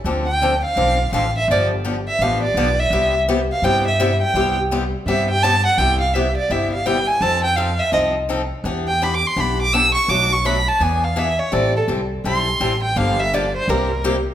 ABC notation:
X:1
M:4/4
L:1/16
Q:"Swing" 1/4=167
K:C
V:1 name="Violin"
z2 g4 f6 f2 e2 | d2 z4 e2 f2 d4 e2- | e2 z4 f2 g2 e4 g2- | g2 z6 e2 g2 a2 ^f2 |
g2 f2 e2 d2 e2 f2 g2 _a2 | a2 g2 f2 e2 _e2 z6 | z2 g2 (3b2 d'2 c'2 b2 d'2 e'2 _d'2 | d'2 _d'2 b2 a2 ^g2 f2 e2 _d2 |
d2 A2 z4 c'6 g2 | f2 e2 d2 c2 _B4 z4 |]
V:2 name="Steel-string acoustic guitar"
[D,F,CDA]2 z2 [D,F,CDA] z3 [D,F,CDA]2 z2 [D,F,CDA] z3 | [D,F,B,DG]2 z2 [D,F,B,DG] z3 [D,F,B,DG]2 z2 [D,F,B,DG] z3 | [C,G,B,EG]2 z2 [C,G,B,EG] z3 [C,G,B,EG]2 z2 [C,G,B,EG] z3 | [C,G,B,EG]2 z2 [C,G,B,EG] z3 [C,G,B,EG]2 z2 [C,G,B,EG] z3 |
[C,G,B,EG]2 z2 [C,G,B,EG] z3 [C,G,B,EG]2 z2 [C,G,B,EG] z3 | [F,C_EA]2 z2 [F,CEA] z3 [F,CEA]2 z2 [F,CEA] z3 | [E,B,DG]2 z2 [E,B,DG] z3 [E,B,DG]2 z2 [E,B,DG] z3 | [B,,^F,A,D^F]2 z2 [B,,F,A,DF] z3 [E,B,D^G]2 z2 [E,B,DG] z3 |
[E,G,CEA]2 z2 [E,G,CEA] z3 [E,G,CEA]2 z2 [E,G,CEA] z3 | [D,F,_B,DG]2 z2 [D,F,B,DG] z3 [C,G,B,EG]2 z2 [C,G,B,EG] z3 |]
V:3 name="Upright bass" clef=bass
D,,8 B,,,4 A,,,4 | G,,,8 A,,,4 B,,,4 | C,,8 G,,8 | C,,8 G,,8 |
C,,8 G,,,8 | F,,8 C,,8 | E,,8 B,,,8 | B,,,8 E,,8 |
A,,,4 C,,4 B,,,4 A,,,4 | G,,,8 C,,8 |]